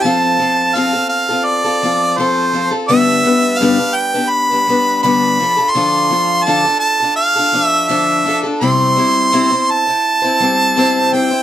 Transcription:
0.03 steel-string acoustic guitar F3 C4 F4 A4, harmonica A5
0.39 steel-string acoustic guitar F3 C4 F4 A4
0.75 steel-string acoustic guitar F3 C4 F4 A4, harmonica F5
0.93 steel-string acoustic guitar C4 F4 A4
1.09 harmonica F5
1.29 steel-string acoustic guitar C4 F4 A4
1.45 harmonica D5
1.64 steel-string acoustic guitar C4 F4 A4
1.83 steel-string acoustic guitar F3 C4 F4 A4
2.18 steel-string acoustic guitar F3 C4 F4 A4, harmonica C5
2.53 steel-string acoustic guitar F3 C4 F4 A4
2.71 steel-string acoustic guitar C4 F4 A4
2.88 steel-string acoustic guitar G2 D3 G3 B3 D4 B4, harmonica E5
3.24 steel-string acoustic guitar G3 B3 D4 B4
3.58 steel-string acoustic guitar G2 D3 G3 B3, harmonica F5
3.62 steel-string acoustic guitar D4 B4
3.78 steel-string acoustic guitar G3 B3 D4 B4
3.95 harmonica G5
4.14 steel-string acoustic guitar G3 B3 D4 B4
4.30 harmonica B5
4.49 steel-string acoustic guitar G3 B3 D4 B4
4.67 steel-string acoustic guitar G3 B3 D4 B4
5.03 steel-string acoustic guitar G2 D3 G3 B3 D4 B4, harmonica B5
5.40 steel-string acoustic guitar F3 D4 F4 A4
5.57 steel-string acoustic guitar D4 F4 A4
5.71 harmonica C6
5.75 steel-string acoustic guitar D3 F3 D4 F4 A4
6.10 steel-string acoustic guitar F3 D4 F4 A4
6.44 steel-string acoustic guitar D3 F3 D4, harmonica A5
6.48 steel-string acoustic guitar F4 A4
6.64 steel-string acoustic guitar D4 F4 A4
6.79 harmonica A5
7.00 steel-string acoustic guitar D4 F4 A4
7.16 harmonica F5
7.36 steel-string acoustic guitar D4 F4 A4
7.53 steel-string acoustic guitar F3 D4 F4 A4
7.64 harmonica E5
7.88 steel-string acoustic guitar D3 F3 D4 F4 A4, harmonica E5
8.25 steel-string acoustic guitar F3 D4 F4 A4
8.43 steel-string acoustic guitar D4 F4 A4
8.61 steel-string acoustic guitar C3 G3 C4 E4 C5, harmonica C6
8.96 steel-string acoustic guitar G3 C4 E4 C5
9.32 steel-string acoustic guitar C3 G3 C4 E4 C5
9.51 steel-string acoustic guitar C4 E4 C5
9.71 harmonica A5
9.87 steel-string acoustic guitar C4 E4 C5
10.22 steel-string acoustic guitar C4 E4 C5
10.40 steel-string acoustic guitar G3 C4 E4 C5
10.76 steel-string acoustic guitar C3 G3 C4 E4 C5
11.12 steel-string acoustic guitar G3 C4 E4 C5, harmonica G5
11.31 steel-string acoustic guitar C4 E4 C5

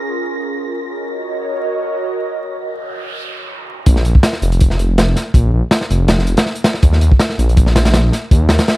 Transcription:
Already playing: analog synth pad C#4 F4 G#4 A#4, synth texture A#6
0.90 analog synth pad F#4 A#4 C#5 D#5
2.38 noise sweep
3.86 detuned saw bass A#1, kick, closed hi-hat
3.96 snare
4.05 detuned saw bass A#1, closed hi-hat
4.15 kick
4.23 snare, closed hi-hat
4.33 snare
4.42 detuned saw bass F1, closed hi-hat
4.52 closed hi-hat
4.60 kick, closed hi-hat
4.70 snare
4.79 closed hi-hat
4.98 snare, closed hi-hat
5.16 snare, closed hi-hat
5.34 detuned saw bass A#1, kick, closed hi-hat
5.53 detuned saw bass A#1
5.71 snare, closed hi-hat
5.81 snare
5.90 detuned saw bass F1, closed hi-hat
6.08 snare, closed hi-hat
6.19 snare
6.27 detuned saw bass F1, closed hi-hat
6.37 snare, closed hi-hat
6.46 snare
6.55 closed hi-hat
6.64 snare, closed hi-hat
6.74 snare
6.83 detuned saw bass D#2, kick, closed hi-hat
6.93 snare
7.01 detuned saw bass D#2, closed hi-hat
7.12 kick
7.19 snare, closed hi-hat
7.29 snare
7.38 detuned saw bass A#1, closed hi-hat
7.49 closed hi-hat
7.57 kick, closed hi-hat
7.66 snare
7.76 snare, closed hi-hat
7.85 snare, closed hi-hat
7.94 snare, closed hi-hat
8.12 snare, closed hi-hat
8.31 detuned saw bass D#2, kick, closed hi-hat
8.49 detuned saw bass D#2, snare, closed hi-hat
8.59 snare, closed hi-hat
8.68 snare, closed hi-hat

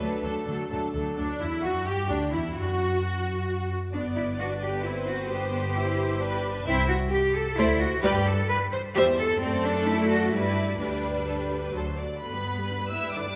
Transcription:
Already playing: violin section B4
0.00 viola section F#3 A3, violin section D4 A4
0.22 double bass section D2, cello section D3, viola section F#3 A3, violin section D4 A4
0.46 double bass section D2, cello section D3, viola section F#3 A3, violin section D4 A4
0.70 double bass section D2, cello section D3, viola section F#3 A3, violin section D4 A4
0.94 double bass section D2, cello section D3, viola section F#3 A3, violin section D4 A4
1.17 double bass section D2, cello section D4, violin section D4, viola section D4
1.41 double bass section E2, cello section E4, violin section E4, viola section E4
1.64 double bass section F#2, violin section F#4, cello section F#4, viola section F#4
1.86 double bass section G2, cello section G4, violin section G4, viola section G4
2.10 double bass section D2, cello section D4, violin section D4, viola section D4
2.32 double bass section E2, violin section E4, cello section E4, viola section E4
2.56 double bass section F#2, violin section F#4, viola section F#4, cello section F#4
3.92 double bass section G1, viola section B3, cello section D4, violin section D5
4.15 cello section E4
4.37 viola section D4, cello section F#4, violin section B4
4.62 cello section G4
4.85 viola section C4, cello section E4, violin section C5
5.08 cello section F#4
5.30 viola section B3, cello section G4
5.76 viola section E4
6.20 viola section D4, violin section B4
6.66 double bass section C2, viola section C4, cello section E4, violin section C5 E5
6.88 cello section F#4
7.11 cello section G4
7.34 cello section A4
7.57 double bass section D2, viola section A3, cello section E4, violin section C5 D5
7.80 cello section F#4
8.02 double bass section G2, viola section G3, cello section G4, violin section B4 D5
8.25 cello section A4
8.49 cello section B4
8.72 cello section C5
8.95 double bass section E2, viola section G3, cello section G4, violin section C5 E5
9.18 cello section A4
9.41 double bass section F#2, viola section A3, cello section C4, violin section A4 D5
9.64 cello section D4
9.86 cello section E4
10.09 cello section F#4
10.33 double bass section G2, viola section G3, cello section E4, violin section B4 D5
10.80 double bass section D2, viola section G3, cello section D4, violin section B4 D5
11.28 violin section A4
11.52 violin section B4
11.74 double bass section D2, viola section F#3, violin section A4 C5
11.99 violin section D5
12.21 double bass section G2, viola section D3 B4, cello section B3, violin section B4 B5
12.33 viola section G3
12.45 viola section B3
12.57 viola section G3
12.70 viola section D3
12.81 viola section G3
12.91 viola section B3, cello section E4, violin section E5 E6
13.04 viola section G3
13.14 viola section D3, cello section D4, violin section D5 D6
13.26 viola section G3

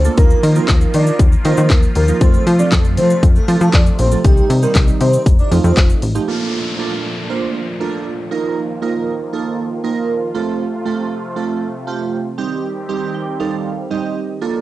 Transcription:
Already playing: supersaw synth A#2 D3 F4 A4
0.05 synth keys A3 A#3 D4 F4 A4, shaker
0.17 analog synth bass D#2, supersaw synth D#3 F3 A#3 F4, synth keys F3 A#3 D#4 F4 A#4, digital synth lead A#4, kick, closed hi-hat, shaker
0.30 shaker
0.43 analog synth bass D#3, open hi-hat, shaker
0.56 synth keys F3 A#3 D#4 F4 A#4, digital synth lead C5, shaker
0.68 analog synth bass D#2, kick, snare, clap, closed hi-hat, shaker
0.81 shaker
0.94 analog synth bass D#3, digital synth lead D5, open hi-hat, shaker
1.07 shaker
1.19 analog synth bass D#2, kick, closed hi-hat, shaker
1.32 shaker
1.45 analog synth bass D#3, synth keys F3 A#3 D#4 F4 A#4, digital synth lead C5, open hi-hat, shaker
1.58 analog synth bass D#3, shaker
1.70 analog synth bass D#2, kick, snare, clap, closed hi-hat, shaker
1.83 shaker
1.96 analog synth bass D#2, digital synth lead A#4, open hi-hat, shaker
2.08 synth keys F3 A#3 D#4 F4 A#4, shaker
2.21 analog synth bass F2, supersaw synth C3 A3, synth keys F3 A3 C4 F4 A4, digital synth lead C5, kick, closed hi-hat, shaker
2.34 shaker
2.47 analog synth bass F3, open hi-hat, shaker
2.59 synth keys F3 A3 C4 F4 A4, digital synth lead D5, shaker
2.72 analog synth bass F2, kick, snare, clap, closed hi-hat, shaker
2.84 shaker
2.97 analog synth bass F3, digital synth lead C5, open hi-hat, shaker
3.10 shaker
3.23 analog synth bass F2, kick, closed hi-hat, shaker
3.36 digital synth lead A4, shaker
3.48 synth keys F3 A3 C4 F4 A4, analog synth bass F3, open hi-hat, shaker
3.61 analog synth bass F3, digital synth lead A4, shaker
3.73 analog synth bass F2, digital synth lead D5, kick, snare, clap, closed hi-hat, shaker
3.86 shaker
3.99 analog synth bass A#1, digital synth lead C5, open hi-hat, shaker
4.12 synth keys F3 A3 C4 F4 A4, shaker
4.24 analog synth bass C2, synth keys D#3 G3 C4 D#4 G4, supersaw synth D#3 G3 D#4, digital synth lead G4, kick, closed hi-hat, shaker
4.37 shaker
4.50 analog synth bass C3, open hi-hat, shaker
4.63 synth keys D#3 G3 C4 D#4 G4, digital synth lead A#4, shaker
4.75 analog synth bass C2, kick, snare, clap, closed hi-hat, shaker
4.88 shaker
5.01 analog synth bass C3, digital synth lead C5, open hi-hat, shaker
5.13 shaker
5.26 analog synth bass F1, supersaw synth F3 A3, kick, closed hi-hat, shaker
5.39 digital synth lead D5, shaker
5.51 analog synth bass F2, synth keys F3 A3 C4 D#4 F4, open hi-hat, shaker
5.64 analog synth bass F2, digital synth lead C5, shaker
5.77 analog synth bass F1, kick, snare, clap, closed hi-hat, shaker
5.90 shaker
6.02 analog synth bass A1, open hi-hat, shaker
6.15 synth keys F3 A3 C4 D#4 G4, shaker
6.28 supersaw synth A#2 F3 A3 D4, synth keys A#3 D4 F4 A4, downlifter
6.78 synth keys A#3 D4 F4 A4
7.29 synth keys A#3 D4 F4 C5
7.80 synth keys A#3 D4 F4 A4
8.31 supersaw synth D#3 A#3 F4, synth keys A#3 D#4 F4 A#4
8.82 synth keys A#3 D#4 F4 A#4
9.33 synth keys A#3 D#4 F4 A4
9.84 synth keys A#3 D#4 F4 A#4
10.34 supersaw synth C3 A3, synth keys A3 C4 F4 A4
10.85 synth keys A3 C4 F4 A4
11.36 synth keys A3 C4 F4 A4
11.87 synth keys A3 C4 F4 G4
12.38 supersaw synth D#3 G3 C4 G4, synth keys G3 C4 D#4 G4
12.89 synth keys G3 C4 D#4 G4
13.14 synth keys G5
13.40 synth keys G3 C4 D#4 A4 F5
13.90 synth keys G3 C4 D#4 G4 D#5
14.41 supersaw synth F3 A#3 D4 A4, synth keys A#3 D4 F4 A4

